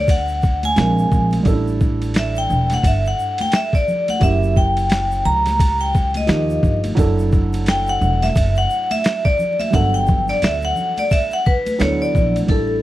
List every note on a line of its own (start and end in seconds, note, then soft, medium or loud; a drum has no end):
0.00 0.73 D2 medium
0.00 0.72 G3 medium
0.00 0.72 B3 medium
0.00 0.73 D4 medium
0.00 0.74 F#4 medium
0.00 0.74 A4 medium
0.08 0.66 F#5 medium
0.08 kick medium
0.08 ride medium
0.08 shaker medium
0.28 shaker soft
0.42 kick medium
0.42 shaker soft
0.63 1.29 G#5 medium
0.63 ride medium
0.63 high conga medium
0.63 shaker soft
0.76 1.05 A#1 loud
0.76 1.45 G#3 medium
0.76 1.46 C4 medium
0.76 1.46 D4 medium
0.76 1.46 F4 medium
0.76 1.47 A#4 medium
0.76 snare loud
0.76 hi-hat pedal soft
0.76 ride medium
0.76 shaker medium
0.98 shaker soft
1.12 1.40 A#1 medium
1.12 kick medium
1.12 low conga medium
1.12 shaker soft
1.33 ride medium
1.33 high conga medium
1.33 shaker medium
1.43 2.45 A1 loud
1.43 4.16 G3 medium
1.43 4.17 A3 medium
1.43 1.53 C#4 medium
1.43 4.18 E4 medium
1.43 kick loud
1.43 ride medium
1.43 shaker medium
1.48 4.19 A4 medium
1.52 4.21 D4 medium
1.67 shaker soft
1.80 kick medium
1.80 shaker soft
2.02 ride soft
2.02 shaker soft
2.14 2.38 E5 medium
2.14 snare loud
2.14 hi-hat pedal medium
2.14 ride medium
2.14 shaker medium
2.36 2.69 G5 medium
2.36 shaker medium
2.50 2.78 E1 medium
2.50 low conga medium
2.50 shaker soft
2.70 snare soft
2.70 ride medium
2.70 high conga medium
2.70 shaker medium
2.74 2.85 F#5 medium
2.83 3.12 G1 medium
2.83 3.07 E5 medium
2.83 kick medium
2.83 ride medium
2.83 shaker medium
3.05 3.38 F#5 medium
3.05 shaker soft
3.19 shaker medium
3.38 3.54 G5 medium
3.38 ride medium
3.38 high conga medium
3.38 shaker soft
3.52 3.75 E5 medium
3.52 snare loud
3.52 hi-hat pedal soft
3.52 ride medium
3.52 shaker medium
3.73 4.10 D5 medium
3.73 kick medium
3.73 shaker soft
3.88 low conga medium
3.88 shaker soft
4.08 4.23 F#5 medium
4.08 ride medium
4.08 high conga medium
4.08 shaker medium
4.19 5.21 F#1 loud
4.19 6.24 F#3 medium
4.19 6.24 A#3 medium
4.19 6.25 C#4 medium
4.19 6.25 E4 medium
4.19 4.58 E5 medium
4.19 kick medium
4.19 ride medium
4.19 shaker medium
4.24 6.26 G4 medium
4.43 shaker soft
4.56 5.28 G5 loud
4.56 kick medium
4.56 shaker soft
4.77 ride medium
4.77 shaker soft
4.90 snare loud
4.90 hi-hat pedal medium
4.90 ride medium
4.90 shaker soft
5.11 shaker medium
5.25 6.25 C#2 medium
5.25 5.82 A#5 loud
5.25 low conga medium
5.25 shaker soft
5.46 snare soft
5.46 ride medium
5.46 high conga soft
5.46 shaker soft
5.59 kick medium
5.59 ride medium
5.59 shaker medium
5.79 6.13 G5 medium
5.79 shaker soft
5.94 kick medium
5.94 shaker medium
6.14 6.81 D#5 medium
6.14 ride medium
6.14 high conga medium
6.14 shaker soft
6.27 6.56 D#2 loud
6.27 6.97 F3 medium
6.27 6.97 A#3 medium
6.27 6.98 D#4 medium
6.27 6.97 F4 medium
6.27 6.98 G4 medium
6.27 snare loud
6.27 hi-hat pedal soft
6.27 ride medium
6.27 shaker medium
6.50 shaker soft
6.63 6.91 G1 medium
6.63 kick medium
6.63 low conga medium
6.63 shaker soft
6.84 ride medium
6.84 high conga medium
6.84 shaker soft
6.95 7.97 F#1 loud
6.95 9.68 F#3 medium
6.95 9.69 A3 medium
6.95 9.69 D4 medium
6.95 9.70 E4 medium
6.95 kick loud
6.95 ride medium
6.95 shaker medium
6.99 9.70 A4 medium
7.19 shaker soft
7.32 kick medium
7.32 shaker soft
7.53 ride medium
7.53 shaker soft
7.66 7.87 G5 medium
7.66 snare loud
7.66 hi-hat pedal medium
7.66 ride medium
7.66 shaker medium
7.87 8.24 F#5 loud
7.87 shaker soft
8.01 8.29 E1 medium
8.01 low conga medium
8.01 shaker soft
8.22 8.58 E5 medium
8.22 snare soft
8.22 ride medium
8.22 high conga medium
8.22 shaker medium
8.36 8.64 F#1 loud
8.36 kick medium
8.36 ride medium
8.36 shaker medium
8.56 8.89 F#5 loud
8.56 shaker soft
8.70 shaker soft
8.91 9.23 E5 medium
8.91 ride medium
8.91 high conga medium
8.91 shaker soft
9.04 snare loud
9.04 hi-hat pedal soft
9.04 ride medium
9.04 shaker medium
9.25 9.57 D5 medium
9.25 kick medium
9.25 shaker soft
9.39 low conga medium
9.39 shaker soft
9.59 9.72 E5 medium
9.59 ride medium
9.59 high conga medium
9.59 shaker medium
9.70 10.29 G1 loud
9.70 11.77 F#3 medium
9.70 11.75 G3 medium
9.70 11.76 B3 medium
9.70 11.76 D4 medium
9.70 kick medium
9.70 ride medium
9.70 shaker medium
9.75 11.77 A4 medium
9.75 9.95 F#5 loud
9.94 10.26 G5 medium
9.94 shaker soft
10.07 kick medium
10.07 low conga medium
10.07 shaker soft
10.28 10.43 D5 medium
10.28 snare soft
10.28 ride medium
10.28 shaker soft
10.42 10.70 D2 medium
10.42 10.64 E5 medium
10.42 snare loud
10.42 hi-hat pedal medium
10.42 ride medium
10.42 shaker medium
10.62 10.99 F#5 medium
10.62 shaker medium
10.76 low conga medium
10.76 shaker soft
10.97 11.12 D5 medium
10.97 ride medium
10.97 high conga medium
10.97 shaker medium
11.11 11.33 E5 medium
11.11 kick medium
11.11 ride medium
11.11 shaker medium
11.31 11.39 F#5 medium
11.31 shaker soft
11.46 11.78 B4 medium
11.46 kick loud
11.46 shaker medium
11.66 ride medium
11.66 high conga medium
11.66 shaker soft
11.79 12.08 D2 loud
11.79 12.48 F#3 medium
11.79 12.49 B3 medium
11.79 12.48 D4 medium
11.79 12.49 E4 medium
11.79 12.50 A4 medium
11.79 12.00 C#5 medium
11.79 snare loud
11.79 hi-hat pedal soft
11.79 ride medium
11.79 shaker medium
12.02 12.34 D5 medium
12.02 shaker medium
12.15 12.43 A#1 medium
12.15 kick medium
12.15 low conga medium
12.15 shaker soft
12.36 ride medium
12.36 high conga medium
12.36 shaker medium
12.47 12.82 A1 medium
12.47 12.82 G3 medium
12.47 12.82 A3 medium
12.47 12.82 D4 medium
12.47 12.82 E4 medium
12.47 12.82 A4 medium
12.47 kick medium
12.47 ride medium
12.51 12.82 A4 medium